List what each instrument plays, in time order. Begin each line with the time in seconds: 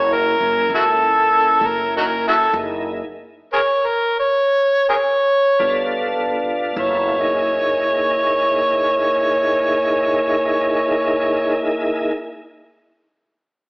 Already playing: upright bass F#1, tonewheel organ A#3 C#4 E4 G#5, harmonica C#5
0.13 harmonica A#4
0.40 upright bass F#1
0.70 upright bass C#2
0.75 harmonica E4 F#4 A4
1.61 upright bass F#1
1.66 harmonica A#4
1.97 harmonica D#4 F#4 A#4
2.28 harmonica E4 F#4 A4
2.53 upright bass F#1, tonewheel organ A#3 D#4 E4 G#4
3.53 harmonica G#4 A#4 C#5
3.86 harmonica A#4
4.20 harmonica C#5
4.89 harmonica G#4 A#4 C#5
5.59 upright bass G1, tonewheel organ B3 D4 F4 A4
6.76 upright bass F#1, tonewheel organ B3 E4 F4 A4, harmonica C#5
7.18 tonewheel organ A#3 D#4 E4 G#4